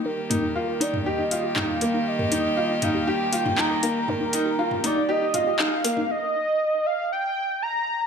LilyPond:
<<
  \new Staff \with { instrumentName = "Soft synth lead" } { \time 4/4 \key ees \major \tempo 4 = 119 bes'4. d''8 ees''4 f''4 | ees''4. f''8 g''4 bes''4 | bes'4. d''8 ees''4 f''4 | ees''4. f''8 g''4 bes''4 | }
  \new Staff \with { instrumentName = "Grand piano" } { \time 4/4 \key ees \major r8 ees'8 f'8 ees'8 g'8 f'8 ees'8 bes8 | r8 ees'8 f'8 ees'8 g'8 f'8 ees'8 bes8 | r8 ees'8 f'8 ees'8 g'8 f'8 ees'8 bes8 | r1 | }
  \new Staff \with { instrumentName = "Synth arpeggio sound" } { \time 4/4 \key ees \major ees'16 r16 bes16 ees'16 r16 bes'16 ees'16 r16 ees'16 ees'16 r16 g'16 ees'16 r16 bes16 ees'16 | r16 bes'16 ees'16 r16 ees'16 ees'16 r16 g'16 ees'16 r16 bes16 ees'16 r16 bes'16 ees'16 r16 | ees'16 ees'16 r16 g'16 ees'16 r16 bes16 ees'16 ees'16 ees'16 r16 g'16 ees'16 r16 bes16 ees'16 | r1 | }
  \new Staff \with { instrumentName = "String quartet" } { \clef bass \time 4/4 \key ees \major <ees g bes g'>1~ | <ees g bes g'>1~ | <ees g bes g'>1 | r1 | }
  \new DrumStaff \with { instrumentName = "Drums" } \drummode { \time 4/4 r8 <hh toml>8 r8 hh16 toml16 r8 hh8 <hc toml>8 hh8 | r16 toml16 hh8 r8 <hh toml>8 r8 hh16 toml16 hc8 hh8 | toml8 hh8 r16 toml16 hh8 r8 <hh toml>8 hc8 hh16 toml16 | r4 r4 r4 r4 | }
>>